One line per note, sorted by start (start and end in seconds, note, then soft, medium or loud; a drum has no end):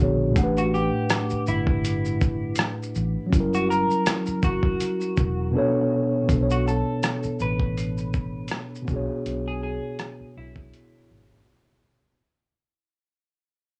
0.00 0.32 A#1 medium
0.00 0.35 D3 medium
0.00 0.35 B3 medium
0.00 0.34 D4 medium
0.00 0.37 F#4 medium
0.00 0.37 G#4 medium
0.00 0.38 C#5 medium
0.30 3.25 A2 medium
0.30 3.26 A3 medium
0.35 0.88 A1 loud
0.35 3.28 D4 medium
0.35 3.29 F#5 medium
0.35 kick loud
0.35 closed hi-hat medium
0.35 shaker medium
0.41 3.31 G4 medium
0.41 3.32 B4 medium
0.57 0.72 F#4 medium
0.57 shaker medium
0.74 1.44 G4 medium
0.74 shaker soft
1.10 cross-stick loud
1.10 closed hi-hat medium
1.10 shaker medium
1.30 muted fingered electric bass stroke soft
1.30 shaker soft
1.47 2.54 G1 medium
1.47 2.55 E4 medium
1.47 shaker soft
1.67 kick medium
1.85 closed hi-hat medium
1.85 shaker medium
2.05 shaker soft
2.21 kick medium
2.21 shaker soft
2.55 cross-stick loud
2.55 closed hi-hat medium
2.55 shaker medium
2.83 shaker medium
2.95 3.14 A1 medium
2.95 shaker soft
3.26 5.47 F#3 medium
3.26 5.49 C#4 medium
3.32 3.84 F#1 loud
3.32 5.52 G3 medium
3.32 5.51 E4 soft
3.32 kick loud
3.32 closed hi-hat medium
3.32 shaker medium
3.40 5.54 A#4 medium
3.54 3.68 F#4 medium
3.54 shaker medium
3.70 4.40 A#4 medium
3.70 shaker soft
3.91 shaker soft
4.06 cross-stick loud
4.06 closed hi-hat medium
4.06 shaker medium
4.26 muted fingered electric bass stroke soft
4.26 shaker soft
4.43 4.76 F#1 medium
4.43 5.51 F#4 medium
4.43 kick medium
4.43 shaker soft
4.63 kick medium
4.80 closed hi-hat medium
4.80 shaker medium
5.01 shaker soft
5.17 5.55 E1 medium
5.17 kick loud
5.17 shaker soft
5.52 6.21 B2 medium
5.52 6.25 B3 medium
5.52 6.28 D4 medium
5.57 6.30 A4 medium
5.57 6.30 C#5 medium
6.23 8.81 B2 medium
6.23 8.82 B3 soft
6.29 6.81 B1 medium
6.29 8.84 D4 soft
6.29 8.86 A4 soft
6.29 kick loud
6.29 closed hi-hat medium
6.29 shaker medium
6.36 6.40 C5 soft
6.43 8.91 C#5 medium
6.50 6.65 F#4 medium
6.50 shaker medium
6.68 7.37 A4 medium
6.68 shaker soft
7.03 cross-stick loud
7.03 closed hi-hat medium
7.03 shaker medium
7.23 muted fingered electric bass stroke soft
7.23 shaker soft
7.40 8.47 A1 medium
7.40 8.48 B4 medium
7.40 shaker soft
7.60 kick medium
7.77 closed hi-hat medium
7.77 shaker medium
7.98 shaker soft
8.14 kick medium
8.14 shaker soft
8.48 cross-stick loud
8.48 closed hi-hat medium
8.48 shaker medium
8.75 shaker soft
8.82 11.77 B2 medium
8.82 11.78 B3 medium
8.87 9.07 B1 medium
8.87 11.80 D4 medium
8.87 11.81 F#4 medium
8.87 kick loud
8.87 shaker soft
8.93 11.83 G#4 medium
8.93 11.84 C#5 medium
9.26 9.77 B1 medium
9.26 closed hi-hat medium
9.48 9.61 G#4 medium
9.63 10.33 G#4 medium
9.99 cross-stick loud
9.99 closed hi-hat medium
10.21 muted fingered electric bass stroke soft
10.37 10.70 B1 medium
10.37 11.44 E4 medium
10.56 kick medium
10.73 closed hi-hat medium
11.11 11.44 G#1 medium